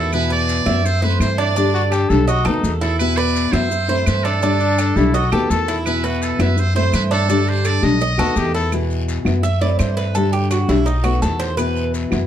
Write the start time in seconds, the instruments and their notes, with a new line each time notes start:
Already playing: upright bass E2, nylon-string guitar D#3 A3 B3 F#4, cuban tres E4, muted trumpet A4
0.12 nylon-string guitar B2 E3 B3 E4 F#4, muted trumpet B4, long guiro, claves, maracas
0.30 cuban tres B4, muted trumpet D5, maracas
0.48 short guiro, maracas
0.66 upright bass F#2, nylon-string guitar E3 B3 E4 F#4, cuban tres E5, short guiro, claves, maracas
0.84 muted trumpet C5, muted nylon-string guitar stroke, long guiro, maracas
1.02 nylon-string guitar A3 C4 E4, muted trumpet B4, cuban tres C5, maracas
1.20 upright bass G2, nylon-string guitar E3 A3 C4 E4, muted trumpet C5, short guiro, claves, maracas
1.38 cuban tres D4, muted trumpet D5, short guiro, maracas
1.56 nylon-string guitar D3 G3 D4 G4, cuban tres D4, long guiro, maracas
1.74 trumpet F#4, maracas
1.91 trumpet G4, cuban tres A4, short guiro, claves, maracas
2.10 upright bass B1, nylon-string guitar G3 D4 G4, trumpet A4, short guiro, maracas
2.28 trumpet F#4, cuban tres D#5, muted nylon-string guitar stroke, long guiro, maracas
2.45 upright bass D#2, nylon-string guitar D#3 A3 B3 F#4, trumpet D#4, cuban tres A4, claves, maracas
2.63 upright bass E2, nylon-string guitar D#3 A3 B3 F#4, short guiro, maracas
2.81 cuban tres E4, muted trumpet A4, short guiro, maracas
2.99 nylon-string guitar B2 E3 B3 E4 F#4, muted trumpet B4, long guiro, claves, maracas
3.17 cuban tres B4, muted trumpet D5, maracas
3.35 short guiro, maracas
3.52 upright bass F#2, nylon-string guitar E3 B3 E4 F#4, muted trumpet C5, cuban tres E5, short guiro, claves, maracas
3.71 muted nylon-string guitar stroke, long guiro, maracas
3.88 nylon-string guitar A3 C4 E4, cuban tres C5, maracas
4.06 upright bass G2, nylon-string guitar E3 A3 C4 E4, muted trumpet B4, short guiro, claves, maracas
4.24 cuban tres D4, muted trumpet A4, short guiro, maracas
4.42 nylon-string guitar D3 G3 D4 G4, cuban tres D4, long guiro, maracas
4.60 trumpet D4, maracas
4.78 cuban tres A4, short guiro, claves, maracas
4.96 upright bass B1, nylon-string guitar G3 D4 G4, trumpet E4, short guiro, maracas
5.14 trumpet F#4, cuban tres D#5, muted nylon-string guitar stroke, long guiro, maracas
5.32 upright bass D#2, nylon-string guitar D#3 A3 B3 F#4, trumpet G4, cuban tres A4, claves, maracas
5.50 upright bass E2, nylon-string guitar D#3 A3 B3 F#4, trumpet A4, short guiro, maracas
5.68 cuban tres E4, short guiro, maracas
5.86 nylon-string guitar B2 E3 B3 E4 F#4, muted trumpet B4, long guiro, claves, maracas
6.04 muted trumpet F#4, cuban tres B4, maracas
6.22 muted trumpet A4, short guiro, maracas
6.39 upright bass F#2, nylon-string guitar E3 B3 E4 F#4, muted trumpet B4, cuban tres E5, short guiro, claves, maracas
6.58 muted trumpet C5, muted nylon-string guitar stroke, long guiro, maracas
6.75 nylon-string guitar A3 C4 E4, cuban tres C5, muted trumpet C5, maracas
6.93 upright bass G2, nylon-string guitar E3 A3 C4 E4, muted trumpet B4, short guiro, claves, maracas
7.11 cuban tres D4, muted trumpet A4, short guiro, maracas
7.29 nylon-string guitar D3 G3 D4 G4, cuban tres D4, long guiro, maracas
7.47 muted trumpet C5, maracas
7.65 cuban tres A4, muted trumpet D5, short guiro, claves, maracas
7.82 upright bass B1, nylon-string guitar G3 D4 G4, muted trumpet D#5, short guiro, maracas
8.00 cuban tres D#5, muted nylon-string guitar stroke, long guiro, maracas
8.18 upright bass D#2, nylon-string guitar D#3 A3 B3 F#4, trumpet F#4, cuban tres A4, claves, maracas
8.36 upright bass E2, nylon-string guitar D#3 A3 B3, trumpet G4, short guiro, maracas
8.54 cuban tres E4, trumpet A4, short guiro, maracas
8.72 nylon-string guitar B2 E3 B3 E4 F#4, long guiro, claves, maracas
8.91 maracas
9.08 short guiro, maracas
9.25 upright bass F#2, nylon-string guitar E3 B3 E4 F#4, short guiro, claves, maracas
9.43 cuban tres E5, muted nylon-string guitar stroke, long guiro, maracas
9.61 nylon-string guitar A3 C4 E4, cuban tres D5, maracas
9.79 upright bass G2, nylon-string guitar E3 A3 C4 E4, cuban tres C5, short guiro, claves, maracas
9.97 cuban tres B4, short guiro, maracas
10.15 nylon-string guitar D3 G3 D4 G4, cuban tres A4, long guiro, maracas
10.33 cuban tres G4, maracas
10.51 cuban tres F#4, short guiro, claves, maracas
10.69 upright bass B1, nylon-string guitar G3 D4 G4, cuban tres E4, short guiro, maracas
10.86 cuban tres D#4, muted nylon-string guitar stroke, long guiro, maracas
11.03 nylon-string guitar D#3 A3 B3 F#4, cuban tres F#4, claves, maracas
11.22 upright bass E2, nylon-string guitar D#3 A3 B3 F#4, cuban tres A4, short guiro, maracas
11.40 cuban tres C5, short guiro, maracas
11.57 nylon-string guitar B2 E3 B3 E4 F#4, cuban tres B4, long guiro, claves, maracas
11.77 maracas
11.94 short guiro, maracas
12.11 upright bass F#2, nylon-string guitar E3 B3 E4 F#4, short guiro, claves, maracas